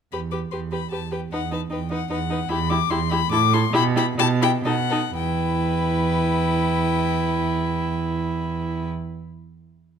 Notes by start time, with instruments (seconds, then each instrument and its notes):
0.12 cello E2, viola G4, violin B4 B5
0.31 viola G4, violin B4 D6
0.51 cello E2, viola G4, violin B4 C6
0.72 viola G4, violin B4 B5
0.91 cello E2, viola G4, violin B4 A5
1.11 viola G4, violin B4 G5
1.32 cello E2, viola D#4, violin B4 F#5
1.51 viola D#4, violin B4 A5
1.70 cello E2, viola D#4, violin B4 G5
1.90 viola D#4, violin B4 F#5
2.10 cello E2, viola D#4, violin B4 F#5
2.30 viola D#4, violin B4
2.49 cello E2, viola E4, violin G4 B5
2.69 viola E4, violin G4 D6
2.90 cello E2, viola E4, violin G4 C6
3.09 viola E4, violin G4 B5
3.31 cello A2, viola E4, violin A4 D6
3.53 viola E4, violin A4 C6
3.73 cello B2, viola E4, violin G4 B5
3.96 viola E4, violin G4 B5
4.18 cello B2, viola E4, violin G4 A5
4.42 viola E4, violin G4 G5
4.65 cello B2, viola D#4, violin A4 F#5
4.90 viola D#4, violin A4
5.15 cello E2, viola E4, violin B4 G5